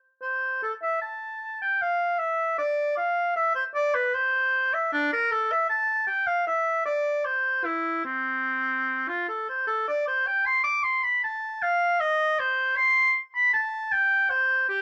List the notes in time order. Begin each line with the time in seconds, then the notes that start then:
0.22 C5
0.63 A4
0.83 E5
1.02 A5
1.62 G5
1.82 F5
2.19 E5
2.58 D5
2.97 F5
3.36 E5
3.55 C5
3.75 D5
3.94 B4
4.14 C5
4.74 E5
4.93 D4
5.13 A#4
5.32 A4
5.52 E5
5.69 A5
6.07 G5
6.27 F5
6.47 E5
6.86 D5
7.25 C5
7.65 E4
8.05 C4
9.09 F4
9.28 A4
9.49 C5
9.67 A4
9.88 D5
10.07 C5
10.27 G5
10.46 C6
10.64 D6
10.83 C6
11.03 B5
11.24 A5
11.62 F5
12.00 D#5
12.39 C5
12.76 C6
13.35 B5
13.53 A5
13.92 G5
14.30 C5
14.69 G4